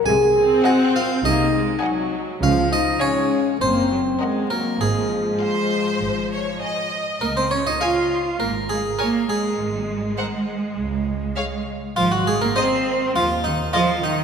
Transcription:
0.06 double bass section C2, cello section C3, viola section G#3, french horn section G#4, harpsichord G#5
0.37 viola section C4
0.65 french horn section F#4, violin section D#5 F#5 G#5, harpsichord F#5
0.96 french horn section F4, harpsichord F5
1.24 double bass section C2, cello section C3, viola section A#3, french horn section D#4, harpsichord D#5
1.54 viola section G#3
1.82 viola section F#3, violin section D#5 F#5 G#5
2.42 double bass section C#2, cello section C#3, viola section F3, french horn section F4, harpsichord F5
2.72 french horn section D#4, harpsichord D#5
3.01 viola section G#3, french horn section C#4, harpsichord C#5, violin section C#5 F5 G#5
3.61 double bass section F#1, cello section F#2, viola section A#3, french horn section C4, harpsichord C5
3.91 viola section F#3
4.20 viola section G#3, violin section A#4 D#5 F#5
4.50 viola section F#3, french horn section A#3, harpsichord A#4
4.80 double bass section G#1, cello section G#2, viola section F3, french horn section G#3, harpsichord G#4
5.41 violin section C5 F5
6.01 double bass section G#1, cello section G#2
6.32 violin section C#5
6.61 violin section D#5 G#5
7.21 double bass section C#2, cello section A#3, harpsichord A#4
7.37 cello section C4, harpsichord C5
7.51 cello section C#4, harpsichord C#5
7.67 cello section D#4, harpsichord D#5
7.80 cello section F4, viola section G#4, violin section C#5 G#5, harpsichord F5
8.40 double bass section G#1, cello section A#3, harpsichord A#4
8.69 cello section G#3, harpsichord G#4
8.99 cello section A#3, viola section G#4, harpsichord A#4, violin section C#5 G#5
9.29 cello section G#3, harpsichord G#4
9.59 double bass section G#1
10.18 viola section A#4, violin section C5 F#5
10.78 double bass section C#2
11.36 viola section G#4, violin section C#5 F5
11.96 double bass section G#1, cello section F3, harpsichord F4
12.12 cello section F#3, harpsichord F#4
12.26 cello section G#3, harpsichord G#4
12.42 cello section A#3, harpsichord A#4
12.55 cello section C4, viola section G#4, harpsichord C5, violin section D#5
13.15 double bass section D#2, cello section F3, harpsichord F4
13.44 cello section D#3, harpsichord D#4
13.73 cello section F3, harpsichord F4, viola section G#4, violin section D#5
14.04 cello section D#3, harpsichord D#4

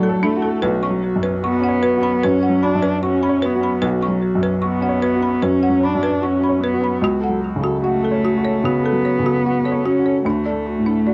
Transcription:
Already playing: upright piano A2 F#3 F#4 A4, cello F#3, viola A4
0.03 marimba A4
0.09 upright piano A4
0.23 cello A3, marimba D4
0.36 upright piano F#4
0.43 marimba A4
0.62 upright piano B1, viola F#4, marimba B4
0.83 viola C#4, marimba C#6
0.90 upright piano F#3
1.04 viola F#4
1.16 upright piano F#2
1.23 viola C#4, marimba B4
1.41 cello B3, viola F#4, upright piano F#4, marimba C#6
1.61 viola C#4, marimba F#5
1.69 upright piano C#5
1.82 viola F#4, marimba B4
1.97 viola C#4, upright piano F#4
2.03 marimba B5
2.20 viola F#4, marimba B4
2.24 upright piano F#2, cello C#4
2.40 viola C#4, marimba F#5
2.49 upright piano F#3
2.61 cello D4, viola F#4, marimba B5
2.75 upright piano F#2
2.81 viola C#4, marimba B4
3.01 cello C#4, viola F#4, upright piano F#4, marimba C#6
3.21 viola C#4, marimba B5
3.29 upright piano C#5
3.40 viola F#4, marimba B4
3.45 cello B3
3.55 upright piano F#4
3.60 viola C#4, marimba B5
3.80 upright piano B1, viola F#4, marimba B4
4.01 viola C#4, marimba C#6
4.08 upright piano F#3
4.21 viola F#4
4.35 upright piano F#2
4.41 viola C#4, marimba B4
4.61 cello B3, viola F#4, upright piano F#4, marimba C#6
4.81 viola C#4, marimba F#5
4.89 upright piano C#5
5.01 viola F#4, marimba B4
5.15 upright piano F#4
5.21 viola C#4, marimba B5
5.40 upright piano F#2, cello C#4, viola F#4, marimba B4
5.60 viola C#4, marimba F#5
5.69 upright piano F#3
5.80 cello D4, viola F#4, marimba B5
5.95 upright piano F#2
5.99 viola C#4, marimba B4
6.20 cello C#4, viola F#4, upright piano F#4, marimba C#6
6.41 viola C#4, marimba B5
6.49 upright piano C#5
6.61 cello B3, viola F#4, marimba B4
6.74 upright piano F#4
6.81 viola C#4, marimba B5
7.01 upright piano C#2, viola F#4, marimba F#4
7.21 viola A4, marimba F#5
7.29 upright piano F#3
7.41 viola F#4
7.56 upright piano C#3
7.61 marimba F#4, viola A4
7.82 cello A3, viola F#4, upright piano F#4, marimba F#5
8.02 viola A4, marimba A4
8.11 upright piano C#5
8.24 viola F#4, marimba F#4
8.37 upright piano F#4
8.43 viola A4, marimba C#5
8.62 upright piano C#3, cello B3, viola F#4, marimba F#4
8.83 viola A4, marimba A4
8.92 upright piano F#3
9.03 viola F#4, marimba C#5
9.19 upright piano C#3, viola A4
9.26 marimba F#4
9.44 viola F#4, upright piano F#4, marimba F#5
9.64 viola A4, marimba C#5
9.72 upright piano C#5
9.84 cello C#4, viola F#4, marimba F#4
9.99 upright piano F#4
10.05 viola A4, marimba C#5
10.25 upright piano D2, cello A3, marimba D4, viola F#4
10.46 viola A4, marimba D5
10.52 upright piano A3
10.66 viola F#4
10.79 upright piano A2
10.86 marimba D4, viola A4
11.06 viola F#4, upright piano F#4, marimba D5

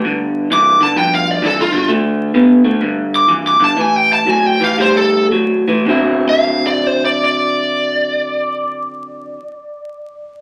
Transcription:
0.04 clean electric guitar G2 D3
0.50 clean electric guitar G2 E3, lead electric guitar D6
0.80 clean electric guitar G2 D3, lead electric guitar A5
0.96 clean electric guitar G2 F3, lead electric guitar G5
1.14 lead electric guitar F5
1.31 lead electric guitar D5
1.42 clean electric guitar G2 E3, lead electric guitar A4
1.61 lead electric guitar F4
1.72 clean electric guitar G2 D3
1.88 clean electric guitar D3 A3
2.34 clean electric guitar D3 B3
2.64 clean electric guitar D3 A3
2.81 clean electric guitar G2 D3
3.16 lead electric guitar D6
3.28 clean electric guitar G2 E3
3.48 lead electric guitar D6
3.60 clean electric guitar G2 D3
3.64 lead electric guitar A5
3.77 clean electric guitar A2 E3, lead electric guitar G#5
3.96 lead electric guitar G5
4.13 lead electric guitar A5
4.26 clean electric guitar A2 F#3, lead electric guitar G#5
4.46 lead electric guitar G5
4.60 clean electric guitar A2 E3, lead electric guitar F5
4.78 clean electric guitar A2 G3, lead electric guitar C5
4.97 lead electric guitar A4
5.31 clean electric guitar A2 F#3
5.68 clean electric guitar A2 E3
5.86 clean electric guitar D3 F#3 C4
5.90 clean electric guitar E4
6.29 lead electric guitar F5
6.67 lead electric guitar D5
6.87 lead electric guitar C5
7.05 lead electric guitar D5
7.24 lead electric guitar D5

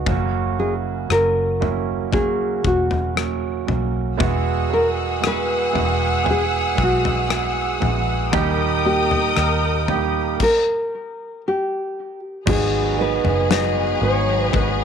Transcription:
0.06 fingered electric bass F#1, grand piano C#3 F#3 A#3 C#4 F#4, kick, floor tom
0.58 grand piano F#3 A#3 C#4 E4, nylon-string guitar G#4
1.08 fingered electric bass F#1, grand piano F#3 A#3 C#4 F#4, nylon-string guitar A#4, cross-stick
1.60 grand piano F#3 A#3 C#4 E4, floor tom
2.11 grand piano F#3 A#3 C#4 F#4, nylon-string guitar G#4, kick, floor tom
2.63 fingered electric bass E1, grand piano F#3 A#3 C#4 F#4, nylon-string guitar F#4, kick
2.91 floor tom
3.14 grand piano F#3 A#3 C#4 F#4, cross-stick
3.66 fingered electric bass B1, grand piano F#3 A#3 C#4 F#4, floor tom
4.17 fingered electric bass E1, grand piano B2 G#3 B3 E4 F#4, string section G#4 F#5 E6, kick, floor tom
4.69 grand piano G#3 B3 E4 F#4
4.73 nylon-string guitar A#4
5.20 grand piano G#3 B3 E4 F#4, cross-stick
5.27 nylon-string guitar B4
5.73 fingered electric bass E1, grand piano G#3 B3 E4 F#4, floor tom
6.23 grand piano G#3 B3 E4 G#4, floor tom
6.30 nylon-string guitar G#4
6.75 fingered electric bass B1, grand piano G#3 B3 E4 F#4, kick
6.83 nylon-string guitar F#4
7.05 floor tom
7.28 grand piano G#3 B3 E4 F#4, cross-stick
7.80 fingered electric bass A#1, grand piano G#3 B3 E4 F#4, floor tom
8.32 fingered electric bass D#2, grand piano A#2 G3 A#3 D#4 G4, string section A#4 G5 D#6, kick, floor tom
8.85 grand piano G3 A#3 D#4 A#4, nylon-string guitar G4
9.11 floor tom
9.37 fingered electric bass D#2, grand piano G3 A#3 D#4 A#4, cross-stick
9.88 grand piano G3 A#3 D#4 G4, floor tom
10.40 nylon-string guitar A#4, kick, crash
11.48 nylon-string guitar G4
12.46 fingered electric bass G#1, grand piano G#2 D#3 G#3 B3 D#4 F#4, string section F#3 B3 G#4, nylon-string guitar G#4, kick, floor tom, crash
12.98 grand piano G#3 B3 D#4 G#4, nylon-string guitar B4
13.24 fingered electric bass F#1, floor tom
13.50 grand piano G#3 B3 D#4 F#4, nylon-string guitar D#5, snare
14.01 fingered electric bass G#1, grand piano G#3 B3 D#4 F#4, nylon-string guitar C#5
14.45 nylon-string guitar B4
14.52 fingered electric bass G#1, grand piano G#3 B3 D#4 F#4, nylon-string guitar B4, kick, floor tom

